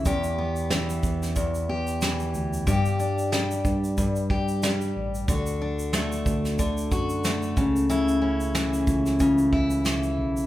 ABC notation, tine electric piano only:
X:1
M:4/4
L:1/8
Q:"Swing 16ths" 1/4=92
K:Bm
V:1 name="Tine electric piano" clef=bass
E,,3 E,,2 E,,2 D,, | G,,3 G,, G,,3 A,,, | D,,3 D,,2 F,,2 C,,- | C,,3 C,, C,,3 B,,, |]